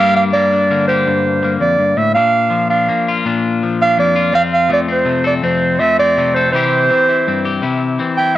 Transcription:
0.00 1.06 G2 medium
0.00 0.32 G3 medium
0.00 0.34 A#3 medium
0.00 0.52 D4 medium
0.00 0.88 G4 medium
0.00 0.15 F5 loud
0.17 0.24 F5 medium
0.33 1.42 G3 medium
0.33 0.71 A#3 medium
0.33 0.84 D5 loud
0.52 1.07 D4 medium
0.70 2.13 D3 medium
0.70 1.43 A#3 medium
0.88 2.14 G4 medium
0.88 1.56 C5 medium
1.07 1.60 G2 medium
1.07 muted clean electric guitar stroke medium
1.43 2.14 A#3 medium
1.43 muted clean electric guitar stroke medium
1.60 1.78 F2 medium
1.60 1.99 D5 medium
1.79 1.97 G2 medium
1.97 2.15 A2 medium
1.97 2.14 E5 medium
2.15 2.88 A#2 medium
2.15 2.69 D4 medium
2.15 2.66 F5 loud
2.50 3.60 F3 medium
2.70 3.25 D4 medium
2.70 3.08 F5 medium
2.88 3.61 A#3 medium
2.88 muted clean electric guitar stroke medium
3.08 4.15 F4 medium
3.25 3.98 A#2 medium
3.25 3.80 D4 medium
3.63 4.33 F3 medium
3.82 4.33 D4 medium
3.82 3.98 F5 loud
3.98 4.32 F2 medium
3.98 4.32 A#3 medium
3.98 4.32 D5 loud
4.16 5.24 F4 medium
4.33 5.41 F2 medium
4.33 4.88 C4 medium
4.33 4.43 F5 loud
4.54 4.70 F5 loud
4.69 5.78 F3 medium
4.69 5.04 A3 medium
4.73 4.81 D5 medium
4.88 5.43 C4 medium
4.88 5.24 C5 medium
5.05 5.79 C3 medium
5.05 5.79 A3 medium
5.24 6.34 A4 medium
5.24 5.35 D5 medium
5.43 6.52 F2 medium
5.43 5.98 C4 medium
5.43 5.81 C5 medium
5.79 6.50 F3 medium
5.79 6.16 A3 medium
5.79 5.98 E5 loud
5.99 6.53 C4 medium
5.99 6.36 D5 loud
6.17 6.51 C3 medium
6.17 6.51 A3 medium
6.35 6.51 A4 medium
6.35 6.52 C5 medium
6.52 6.89 C3 medium
6.52 6.89 E3 medium
6.52 6.89 C4 medium
6.52 7.08 E4 medium
6.52 7.45 G4 medium
6.52 7.58 C5 loud
6.90 7.98 E3 medium
6.90 7.26 C4 medium
7.09 7.62 E4 medium
7.27 7.63 G2 medium
7.27 7.99 C4 medium
7.45 8.38 G4 medium
7.62 7.98 C3 medium
7.62 8.17 E4 medium
7.99 8.38 E3 medium
7.99 8.35 C4 medium
8.17 8.38 E4 medium
8.17 8.37 G5 loud

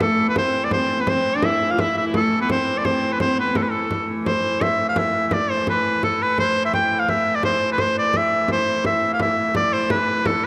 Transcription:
0.00 4.25 A2 medium
0.00 4.25 E3 medium
0.00 0.29 A3 medium
0.00 0.26 A4 medium
0.00 frame drum medium
0.19 frame drum soft
0.27 0.36 B3 medium
0.27 0.37 B4 medium
0.36 0.69 C4 medium
0.36 0.66 C5 medium
0.36 frame drum medium
0.54 frame drum soft
0.64 0.73 D5 medium
0.71 0.97 C4 medium
0.71 1.02 C5 medium
0.71 frame drum medium
0.99 1.03 B3 medium
0.99 1.10 B4 medium
1.06 1.32 C4 medium
1.06 1.38 C5 medium
1.06 frame drum medium
1.25 frame drum soft
1.34 1.45 D4 medium
1.34 1.47 D5 medium
1.42 1.72 E4 medium
1.42 1.72 E5 medium
1.42 frame drum medium
1.61 frame drum soft
1.70 1.79 F4 medium
1.70 1.82 F5 medium
1.79 1.95 E4 medium
1.79 1.97 E5 medium
1.79 frame drum medium
1.97 2.16 E4 medium
1.97 2.05 E5 medium
2.14 2.40 A3 medium
2.14 2.39 A4 medium
2.14 frame drum medium
2.32 frame drum soft
2.40 2.51 B3 medium
2.40 2.49 B4 medium
2.50 2.85 C4 medium
2.50 2.79 C5 medium
2.50 frame drum medium
2.68 frame drum soft
2.78 2.87 D5 medium
2.85 3.18 C4 medium
2.85 3.14 C5 medium
2.85 frame drum medium
3.12 3.20 B4 medium
3.20 3.40 C4 medium
3.20 3.37 C5 medium
3.20 frame drum medium
3.38 3.57 B3 medium
3.38 3.58 B4 medium
3.55 3.69 A3 medium
3.55 3.64 A4 medium
3.55 frame drum medium
3.62 3.72 B4 soft
3.70 4.06 A3 medium
3.70 4.09 A4 medium
3.70 frame drum soft
3.91 frame drum medium
4.25 8.48 A2 medium
4.25 8.49 E3 medium
4.25 4.64 C5 medium
4.25 frame drum medium
4.61 4.88 E5 medium
4.61 frame drum medium
4.79 frame drum soft
4.89 5.00 F5 medium
4.96 5.28 E5 medium
4.96 frame drum medium
5.28 5.35 E5 medium
5.28 frame drum medium
5.33 5.52 D5 medium
5.51 5.68 C5 medium
5.67 6.01 B4 medium
5.67 frame drum medium
5.85 frame drum soft
6.03 6.24 A4 medium
6.03 frame drum medium
6.22 6.39 B4 medium
6.38 6.63 C5 medium
6.38 frame drum medium
6.65 6.73 E5 medium
6.73 7.01 G5 loud
6.73 frame drum medium
6.91 frame drum soft
7.00 7.11 F5 medium
7.08 7.37 E5 medium
7.08 frame drum medium
7.36 7.44 D5 medium
7.43 7.69 C5 medium
7.43 frame drum medium
7.61 frame drum soft
7.72 7.82 B4 medium
7.78 7.98 C5 medium
7.78 frame drum medium
7.99 8.19 D5 medium
8.13 8.51 E5 medium
8.13 frame drum medium
8.31 frame drum soft
8.48 10.47 A2 medium
8.48 10.47 E3 medium
8.48 frame drum medium
8.52 8.84 C5 medium
8.84 9.10 E5 medium
8.84 frame drum medium
9.02 frame drum soft
9.13 9.21 F5 medium
9.19 9.54 E5 medium
9.19 frame drum medium
9.55 9.75 D5 medium
9.55 frame drum medium
9.73 9.92 C5 medium
9.90 10.28 B4 medium
9.90 frame drum medium
10.07 frame drum soft
10.25 10.46 A4 medium
10.25 frame drum medium

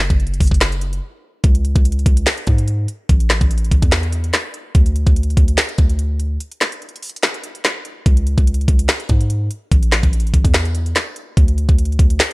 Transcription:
0.10 0.39 F#1 loud
0.10 kick loud
0.10 closed hi-hat medium
0.20 closed hi-hat soft
0.27 closed hi-hat medium
0.34 closed hi-hat medium
0.41 0.51 F#1 loud
0.41 kick loud
0.41 closed hi-hat medium
0.41 open hi-hat medium
0.47 1.00 F#1 loud
0.47 kick medium
0.47 closed hi-hat medium
0.54 closed hi-hat medium
0.61 snare loud
0.61 clap loud
0.61 closed hi-hat medium
0.72 closed hi-hat medium
0.81 closed hi-hat medium
0.93 closed hi-hat medium
1.44 1.74 C#2 loud
1.44 kick loud
1.44 closed hi-hat medium
1.55 closed hi-hat medium
1.65 closed hi-hat medium
1.75 2.05 C#2 loud
1.75 kick loud
1.75 closed hi-hat medium
1.85 closed hi-hat medium
1.92 closed hi-hat medium
1.99 closed hi-hat soft
2.06 2.26 C#2 loud
2.06 kick loud
2.06 closed hi-hat medium
2.17 closed hi-hat medium
2.27 snare loud
2.27 clap loud
2.27 closed hi-hat medium
2.38 closed hi-hat medium
2.47 2.87 G#2 loud
2.47 kick loud
2.47 closed hi-hat medium
2.58 closed hi-hat medium
2.68 closed hi-hat medium
2.88 closed hi-hat medium
3.09 3.40 A1 loud
3.09 kick loud
3.09 closed hi-hat medium
3.20 closed hi-hat medium
3.30 snare medium
3.30 clap medium
3.30 closed hi-hat medium
3.41 3.70 A1 loud
3.41 kick loud
3.41 closed hi-hat medium
3.51 closed hi-hat medium
3.58 closed hi-hat medium
3.64 closed hi-hat soft
3.71 3.82 A1 loud
3.71 kick loud
3.71 closed hi-hat medium
3.82 4.31 E2 loud
3.82 kick medium
3.82 closed hi-hat medium
3.92 snare loud
3.92 clap loud
3.92 closed hi-hat medium
4.03 closed hi-hat medium
4.12 closed hi-hat medium
4.24 closed hi-hat medium
4.33 snare loud
4.33 clap medium
4.33 closed hi-hat medium
4.54 closed hi-hat medium
4.75 5.05 D2 loud
4.75 kick loud
4.75 closed hi-hat medium
4.86 closed hi-hat medium
4.96 closed hi-hat medium
5.07 5.36 D2 loud
5.07 kick loud
5.07 closed hi-hat medium
5.16 closed hi-hat medium
5.23 closed hi-hat medium
5.30 closed hi-hat soft
5.37 5.57 D2 loud
5.37 kick loud
5.37 closed hi-hat medium
5.48 closed hi-hat medium
5.58 snare loud
5.58 clap loud
5.58 closed hi-hat medium
5.69 closed hi-hat medium
5.78 6.38 D2 loud
5.78 kick loud
5.78 closed hi-hat medium
5.89 closed hi-hat medium
5.99 closed hi-hat medium
6.20 closed hi-hat medium
6.40 closed hi-hat medium
6.52 closed hi-hat medium
6.61 snare medium
6.61 clap medium
6.61 closed hi-hat medium
6.72 closed hi-hat medium
6.82 closed hi-hat soft
6.89 closed hi-hat medium
6.96 closed hi-hat medium
7.03 closed hi-hat medium
7.03 open hi-hat medium
7.09 closed hi-hat medium
7.16 closed hi-hat medium
7.23 snare loud
7.23 clap loud
7.23 closed hi-hat medium
7.34 closed hi-hat medium
7.44 closed hi-hat medium
7.55 closed hi-hat medium
7.64 snare loud
7.64 clap medium
7.64 closed hi-hat medium
7.85 closed hi-hat medium
8.06 8.36 C#2 loud
8.06 kick loud
8.06 closed hi-hat medium
8.17 closed hi-hat medium
8.27 closed hi-hat medium
8.38 8.67 C#2 loud
8.38 kick loud
8.38 closed hi-hat medium
8.47 closed hi-hat medium
8.54 closed hi-hat medium
8.61 closed hi-hat soft
8.68 8.88 C#2 loud
8.68 kick loud
8.68 closed hi-hat medium
8.79 closed hi-hat medium
8.89 snare loud
8.89 clap loud
8.89 closed hi-hat medium
9.00 closed hi-hat medium
9.09 9.49 G#2 loud
9.09 kick loud
9.09 closed hi-hat medium
9.21 closed hi-hat medium
9.30 closed hi-hat medium
9.51 closed hi-hat medium
9.71 10.02 A1 loud
9.71 kick loud
9.71 closed hi-hat medium
9.83 closed hi-hat medium
9.92 snare medium
9.92 clap medium
9.92 closed hi-hat medium
10.03 10.32 A1 loud
10.03 kick medium
10.03 closed hi-hat medium
10.13 closed hi-hat medium
10.20 closed hi-hat medium
10.27 closed hi-hat soft
10.34 10.44 A1 loud
10.34 kick loud
10.34 closed hi-hat medium
10.45 10.94 E2 loud
10.45 kick medium
10.45 closed hi-hat medium
10.54 snare loud
10.54 clap loud
10.54 closed hi-hat medium
10.65 closed hi-hat medium
10.75 closed hi-hat medium
10.86 closed hi-hat medium
10.95 snare loud
10.95 clap medium
10.95 closed hi-hat medium
11.16 closed hi-hat medium
11.37 11.67 D2 loud
11.37 kick loud
11.37 closed hi-hat medium
11.48 closed hi-hat medium
11.58 closed hi-hat medium
11.69 11.98 D2 loud
11.69 kick loud
11.69 closed hi-hat medium
11.78 closed hi-hat medium
11.85 closed hi-hat medium
11.92 closed hi-hat soft
11.99 12.19 D2 loud
11.99 kick loud
11.99 closed hi-hat medium
12.10 closed hi-hat medium
12.20 snare loud
12.20 clap loud
12.20 closed hi-hat medium

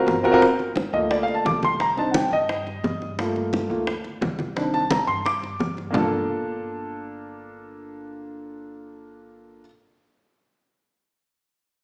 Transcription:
0.00 0.14 C4 medium
0.00 0.14 F4 medium
0.00 0.14 F#4 medium
0.00 0.15 A#4 medium
0.00 0.21 C5 medium
0.06 0.87 G1 medium
0.06 high bongo soft
0.06 low bongo medium
0.06 high conga soft
0.23 0.30 C4 medium
0.23 0.30 F4 medium
0.23 0.30 F#4 medium
0.23 0.31 A#4 medium
0.23 high bongo soft
0.23 high conga soft
0.32 0.41 C4 loud
0.32 0.41 F4 medium
0.32 0.42 F#4 medium
0.32 0.42 A#4 loud
0.42 high bongo medium
0.42 high conga soft
0.59 high bongo soft
0.59 high conga soft
0.76 high bongo medium
0.76 high conga medium
0.93 1.41 D2 medium
0.93 1.76 A3 medium
0.93 1.76 A#3 medium
0.93 1.76 F4 medium
0.93 1.10 D#5 medium
0.93 high conga soft
1.11 1.22 D5 medium
1.11 high bongo medium
1.11 high conga soft
1.23 1.34 F5 medium
1.28 high bongo soft
1.28 high conga soft
1.35 1.45 A5 medium
1.45 2.26 C2 medium
1.45 1.62 D6 medium
1.45 high bongo soft
1.45 low bongo medium
1.45 high conga medium
1.63 1.80 C6 medium
1.63 high bongo soft
1.63 high conga medium
1.80 1.97 A#5 medium
1.80 high bongo medium
1.80 high conga soft
1.97 2.20 C4 medium
1.97 2.21 D4 soft
1.97 2.21 D#4 medium
1.97 2.14 A5 medium
1.97 high bongo soft
1.97 high conga soft
2.11 2.13 F#5 soft
2.11 high bongo medium
2.11 high conga medium
2.16 2.32 G5 medium
2.31 2.79 G2 medium
2.31 3.15 D#5 medium
2.31 high conga soft
2.49 high bongo medium
2.49 high conga soft
2.67 high bongo soft
2.67 high conga soft
2.83 3.64 G2 medium
2.83 high bongo soft
2.83 low bongo medium
2.83 high conga soft
3.02 high bongo soft
3.02 high conga soft
3.18 3.68 A3 medium
3.18 3.69 A#3 soft
3.18 3.69 F4 medium
3.18 high bongo medium
3.18 high conga soft
3.36 high bongo soft
3.36 high conga soft
3.53 high bongo medium
3.53 high conga medium
3.70 4.18 D2 medium
3.70 3.85 A3 soft
3.70 3.85 A#3 soft
3.70 3.86 F4 soft
3.70 high conga soft
3.87 high bongo medium
3.87 high conga soft
4.04 high bongo soft
4.04 high conga soft
4.21 5.02 C2 medium
4.21 high bongo soft
4.21 low bongo medium
4.21 high conga medium
4.39 high bongo soft
4.39 high conga medium
4.56 4.79 D#3 soft
4.56 4.79 C4 soft
4.56 4.80 D4 medium
4.56 high bongo medium
4.56 high conga soft
4.74 4.90 A5 medium
4.74 high bongo soft
4.74 high conga soft
4.91 5.08 A#5 medium
4.91 high bongo medium
4.91 high conga medium
5.07 5.56 G2 medium
5.07 5.24 C6 medium
5.07 high conga soft
5.25 5.74 D6 medium
5.25 high bongo medium
5.25 high conga soft
5.42 high bongo soft
5.42 high conga soft
5.59 5.90 G2 medium
5.59 high bongo soft
5.59 low bongo medium
5.59 high conga soft
5.77 high bongo soft
5.77 high conga soft
5.91 9.62 G1 medium
5.91 9.59 A#3 medium
5.91 9.61 D4 medium
5.91 low conga loud
5.95 9.64 F4 medium
5.95 9.67 A4 medium
5.95 low bongo medium

